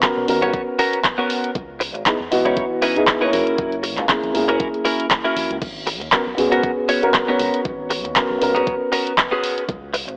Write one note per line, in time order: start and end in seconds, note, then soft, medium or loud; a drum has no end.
0.02 0.25 B3 medium
0.02 0.25 C#4 medium
0.02 0.25 F#4 medium
0.02 0.26 A#4 medium
0.02 kick loud
0.02 clap loud
0.02 closed hi-hat medium
0.17 0.24 B1 medium
0.27 0.44 D#2 medium
0.27 1.53 B3 medium
0.27 1.54 C#4 medium
0.27 1.54 F#4 medium
0.27 1.54 A#4 loud
0.27 open hi-hat loud
0.42 0.49 G#1 medium
0.42 0.60 B3 medium
0.42 0.60 C#4 medium
0.42 0.61 F#4 medium
0.42 0.61 C#5 loud
0.42 closed hi-hat soft
0.54 kick loud
0.54 closed hi-hat medium
0.79 0.99 B3 medium
0.79 0.99 C#4 medium
0.79 0.99 F#4 loud
0.79 0.99 A#4 loud
0.79 open hi-hat loud
0.93 closed hi-hat medium
1.04 kick loud
1.04 clap loud
1.04 closed hi-hat medium
1.18 1.49 B3 medium
1.18 1.49 C#4 medium
1.18 1.50 F#4 medium
1.18 1.50 A#4 medium
1.30 open hi-hat loud
1.44 closed hi-hat medium
1.55 1.95 C#2 loud
1.55 kick loud
1.55 closed hi-hat medium
1.80 muted clean electric guitar stroke loud
1.80 open hi-hat loud
1.94 2.02 G#1 medium
1.94 muted clean electric guitar stroke soft
1.94 closed hi-hat medium
2.06 2.13 B3 medium
2.06 2.13 D#4 medium
2.06 2.13 E4 medium
2.06 2.13 G#4 medium
2.06 kick loud
2.06 clap loud
2.06 closed hi-hat medium
2.20 2.27 E2 medium
2.31 2.46 G#1 medium
2.31 2.93 E3 medium
2.31 2.93 B3 loud
2.31 2.93 F#4 loud
2.31 2.93 D#5 medium
2.31 open hi-hat loud
2.45 2.53 C#2 loud
2.45 2.64 C#4 medium
2.45 2.64 D#4 medium
2.45 2.64 E4 medium
2.45 2.64 C#5 loud
2.45 closed hi-hat medium
2.57 kick loud
2.57 closed hi-hat medium
2.82 3.02 C#4 loud
2.82 3.02 D#4 loud
2.82 3.02 E4 loud
2.82 3.02 B4 loud
2.82 open hi-hat loud
2.96 3.18 B3 medium
2.96 3.18 D#4 medium
2.96 3.19 E4 medium
2.96 3.19 G#4 loud
2.96 closed hi-hat medium
3.07 kick loud
3.07 clap loud
3.07 closed hi-hat medium
3.21 4.06 A#3 medium
3.21 4.07 C#4 medium
3.21 3.31 C#4 medium
3.21 3.33 D#4 medium
3.21 3.32 E4 medium
3.21 4.07 E4 medium
3.21 3.33 B4 loud
3.21 4.07 C#5 medium
3.32 3.42 F#1 loud
3.32 3.75 C#4 medium
3.32 3.75 E4 medium
3.32 3.75 F#4 medium
3.32 3.75 A#4 loud
3.32 open hi-hat loud
3.47 closed hi-hat medium
3.58 3.98 F#1 medium
3.58 kick loud
3.58 closed hi-hat medium
3.72 closed hi-hat soft
3.83 muted clean electric guitar stroke loud
3.83 open hi-hat loud
3.97 4.05 C#2 medium
3.97 muted clean electric guitar stroke soft
3.97 clap soft
3.97 closed hi-hat medium
4.09 4.32 A#3 medium
4.09 4.32 C#4 medium
4.09 4.32 E4 medium
4.09 4.32 G#4 medium
4.09 kick loud
4.09 clap loud
4.09 closed hi-hat medium
4.23 4.30 A#1 medium
4.23 closed hi-hat soft
4.34 4.49 C#2 medium
4.34 5.60 A#3 medium
4.34 5.60 C#4 medium
4.34 5.61 E4 medium
4.34 5.61 G#4 loud
4.34 open hi-hat loud
4.48 4.56 F#1 loud
4.48 4.67 C#4 medium
4.48 4.67 E4 medium
4.48 4.67 F#4 medium
4.48 4.67 A#4 loud
4.48 closed hi-hat medium
4.60 kick loud
4.60 closed hi-hat medium
4.74 closed hi-hat soft
4.85 5.05 C#4 medium
4.85 5.05 E4 loud
4.85 5.05 F#4 medium
4.85 5.05 A#4 loud
4.85 open hi-hat loud
5.00 closed hi-hat medium
5.11 kick loud
5.11 clap loud
5.11 closed hi-hat medium
5.24 5.56 C#4 medium
5.24 5.56 E4 medium
5.24 5.56 F#4 medium
5.24 5.56 A#4 loud
5.24 closed hi-hat soft
5.36 5.45 A#1 medium
5.36 open hi-hat loud
5.50 5.57 C#2 medium
5.50 closed hi-hat medium
5.62 6.01 G#1 medium
5.62 kick loud
5.62 closed hi-hat medium
5.62 crash medium
5.87 muted clean electric guitar stroke loud
5.87 open hi-hat loud
6.00 6.08 D#2 medium
6.00 muted clean electric guitar stroke soft
6.00 closed hi-hat medium
6.12 6.19 B3 medium
6.12 6.20 C#4 medium
6.12 6.20 F#4 medium
6.12 6.20 A#4 medium
6.12 kick loud
6.12 clap loud
6.12 closed hi-hat medium
6.27 6.34 B1 medium
6.37 6.52 D#2 medium
6.37 6.99 B3 medium
6.37 6.99 C#4 medium
6.37 7.00 F#4 medium
6.37 7.00 G#4 loud
6.37 open hi-hat loud
6.52 6.59 G#1 loud
6.52 6.70 B3 medium
6.52 6.70 C#4 medium
6.52 6.70 F#4 medium
6.52 6.71 A#4 loud
6.52 closed hi-hat medium
6.63 kick loud
6.63 closed hi-hat medium
6.89 7.09 B3 loud
6.89 7.09 C#4 loud
6.89 7.09 F#4 loud
6.89 7.09 C#5 loud
6.89 open hi-hat loud
7.02 7.25 B3 medium
7.02 7.25 C#4 medium
7.02 7.25 F#4 medium
7.02 7.25 A#4 loud
7.02 closed hi-hat medium
7.14 kick loud
7.14 clap loud
7.14 closed hi-hat medium
7.27 8.13 B3 medium
7.27 7.60 B3 medium
7.27 8.13 C#4 medium
7.27 7.60 C#4 medium
7.27 7.60 F#4 medium
7.27 8.14 F#4 medium
7.27 7.60 A#4 medium
7.27 8.14 C#5 medium
7.39 7.48 G#1 loud
7.39 open hi-hat loud
7.54 closed hi-hat medium
7.65 8.05 G#1 medium
7.65 kick loud
7.65 closed hi-hat medium
7.90 muted clean electric guitar stroke loud
7.90 open hi-hat loud
8.05 8.12 D#2 medium
8.05 muted clean electric guitar stroke soft
8.05 closed hi-hat medium
8.16 8.39 B3 medium
8.16 8.39 C#4 medium
8.16 8.39 F#4 medium
8.16 8.39 A#4 medium
8.16 kick loud
8.16 clap loud
8.16 closed hi-hat medium
8.30 8.37 B1 medium
8.40 8.56 D#2 medium
8.40 9.67 B3 medium
8.40 9.67 C#4 medium
8.40 9.67 F#4 medium
8.40 9.68 A#4 loud
8.40 open hi-hat loud
8.55 8.63 G#1 loud
8.55 8.74 B3 medium
8.55 8.74 C#4 medium
8.55 8.74 F#4 medium
8.55 8.74 A#4 loud
8.55 closed hi-hat medium
8.67 kick loud
8.67 closed hi-hat medium
8.92 9.12 B3 loud
8.92 9.12 C#4 medium
8.92 9.12 F#4 medium
8.92 9.12 A#4 loud
8.92 open hi-hat loud
9.07 closed hi-hat medium
9.18 kick loud
9.18 clap loud
9.18 closed hi-hat medium
9.31 9.63 B3 medium
9.31 9.63 C#4 medium
9.31 9.63 F#4 medium
9.31 9.63 G#4 loud
9.44 open hi-hat loud
9.58 closed hi-hat medium
9.69 10.08 C#2 loud
9.69 kick loud
9.69 closed hi-hat medium
9.94 muted clean electric guitar stroke loud
9.94 open hi-hat loud
10.08 10.15 G#1 medium
10.08 muted clean electric guitar stroke soft
10.08 closed hi-hat medium